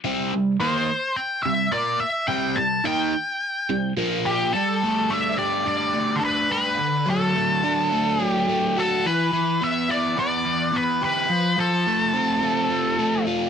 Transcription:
0.04 overdriven electric guitar C3 G3 C4
0.33 overdriven electric guitar C3 G3
0.60 overdriven electric guitar D#3 A#3 D#4, lead electric guitar C5
1.16 lead electric guitar G5
1.43 overdriven electric guitar C3 G3, lead electric guitar E5
1.72 overdriven electric guitar A#3 F4 A#4, lead electric guitar D5
2.00 lead electric guitar E5, muted overdriven electric guitar stroke
2.28 overdriven electric guitar C3 G3 C4, lead electric guitar G5
2.56 overdriven electric guitar C3 G3, lead electric guitar A5
2.84 overdriven electric guitar D#3 A#3 D#4, lead electric guitar G5
3.70 overdriven electric guitar C3 G3
3.97 overdriven electric guitar A#2 F3 A#3
4.26 lead electric guitar G4
4.54 overdriven electric guitar G3, lead electric guitar A4
4.83 overdriven electric guitar A3
5.10 overdriven electric guitar D4, lead electric guitar E5
5.38 overdriven electric guitar G4, lead electric guitar D5
5.66 overdriven electric guitar D4, lead electric guitar D5
5.93 overdriven electric guitar A3
6.16 lead electric guitar A4
6.21 overdriven electric guitar D4
6.25 lead electric guitar B4
6.50 overdriven electric guitar B4, lead electric guitar B4
6.78 overdriven electric guitar D3
7.05 overdriven electric guitar F#3
7.10 lead electric guitar A4
7.35 overdriven electric guitar A3
7.64 overdriven electric guitar D4
7.92 overdriven electric guitar A3
8.19 overdriven electric guitar F#3
8.24 lead electric guitar G4
8.48 overdriven electric guitar A3
8.76 overdriven electric guitar F#4, lead electric guitar A4
9.05 overdriven electric guitar E3, lead electric guitar B4
9.33 overdriven electric guitar E3
9.61 overdriven electric guitar B3, lead electric guitar E5
9.89 overdriven electric guitar E4, lead electric guitar D5
10.17 overdriven electric guitar B3, lead electric guitar D5
10.45 overdriven electric guitar E3
10.73 overdriven electric guitar B3, lead electric guitar B4
11.02 overdriven electric guitar G4, lead electric guitar B4
11.30 overdriven electric guitar F3
11.58 overdriven electric guitar F3, lead electric guitar A4
11.87 overdriven electric guitar A3
12.13 overdriven electric guitar C4
12.43 overdriven electric guitar A3
12.70 overdriven electric guitar F3
12.98 overdriven electric guitar A3
13.27 overdriven electric guitar F4

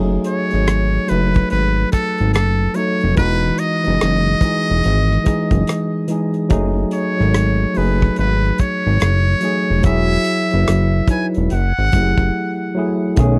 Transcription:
Already playing: analog synth bass F#1, tine electric piano F#3 A3 D#4 G#4
0.24 muted trumpet C#5, closed hi-hat
0.51 analog synth bass G#1, tine electric piano F#3 A3 D#4 G#4, cross-stick, closed hi-hat
0.67 cross-stick, closed hi-hat
1.07 analog synth bass F#1, tine electric piano F#3 A3 D#4, muted trumpet B4, closed hi-hat
1.12 tine electric piano B4
1.34 kick, closed hi-hat
1.50 analog synth bass G#1, muted trumpet B4, closed hi-hat
1.92 muted trumpet A4, kick, cross-stick, closed hi-hat
2.18 analog synth bass G#1, closed hi-hat
2.34 analog synth bass F#1, muted trumpet A4, cross-stick, closed hi-hat
2.74 tine electric piano F#3 A3 D#4, muted trumpet C#5, closed hi-hat
2.78 tine electric piano A4
3.01 analog synth bass F1, closed hi-hat
3.16 analog synth bass E1, tine electric piano E3 G#3 D#4, muted trumpet B4, kick, closed hi-hat
3.20 tine electric piano F#4
3.58 muted trumpet D#5, closed hi-hat
3.83 analog synth bass F#1, tine electric piano E3 G#3 D#4, closed hi-hat
3.88 tine electric piano G#4
4.01 analog synth bass F#1, cross-stick, closed hi-hat
4.41 tine electric piano E3 G#3 D#4, kick, closed hi-hat
4.45 tine electric piano G#4
4.68 analog synth bass E1, closed hi-hat
4.84 analog synth bass G#1, closed hi-hat
5.12 cross-stick
5.24 tine electric piano E3 G#3 D#4, kick, cross-stick, closed hi-hat
5.28 tine electric piano G#4
5.51 analog synth bass F#1, kick, closed hi-hat
5.67 cross-stick, closed hi-hat
6.07 tine electric piano E3 G#3 D#4, closed hi-hat
6.12 tine electric piano G#4
6.34 closed hi-hat
6.49 analog synth bass F#1, tine electric piano F#3 A3 D#4 G#4, kick, closed hi-hat
6.91 muted trumpet C#5, closed hi-hat
7.17 analog synth bass G#1, tine electric piano F#3 A3 D#4 A4, cross-stick
7.34 cross-stick, closed hi-hat
7.74 analog synth bass F#1, tine electric piano F#3 A3 D#4 G#4, muted trumpet B4, open hi-hat
8.02 kick
8.16 analog synth bass G#1, muted trumpet B4, closed hi-hat
8.44 cross-stick
8.58 muted trumpet C#5, kick, cross-stick, closed hi-hat
8.87 analog synth bass G#1
9.00 analog synth bass F#1, cross-stick, closed hi-hat
9.41 tine electric piano F#3 A3 D#4, closed hi-hat
9.45 tine electric piano G#4
9.70 analog synth bass F1
9.83 analog synth bass E1, tine electric piano F#3 E4 F#4, muted trumpet E5, kick, closed hi-hat
9.87 tine electric piano G#4
10.24 closed hi-hat
10.51 analog synth bass F#1, tine electric piano F#3 E4 F#4, closed hi-hat
10.55 tine electric piano B4
10.67 analog synth bass F#1, cross-stick, closed hi-hat
11.08 tine electric piano F#3 D#4 E4, muted trumpet G#5, kick, closed hi-hat
11.12 tine electric piano B4
11.34 analog synth bass E1, closed hi-hat
11.50 analog synth bass F#1, muted trumpet F#5, closed hi-hat
11.78 analog synth bass G#1, cross-stick
11.92 analog synth bass F#1, tine electric piano F#3 A3 E4, kick, closed hi-hat
11.96 tine electric piano G4
12.02 tine electric piano G#4
12.18 analog synth bass F#1, kick
12.75 tine electric piano F#3 A3 E4
12.79 tine electric piano G#4
13.16 analog synth bass B1, tine electric piano D#3 A3 C#4, analog synth pad A3 B3 C#5 D#5 G#5, kick, closed hi-hat
13.20 tine electric piano G#4

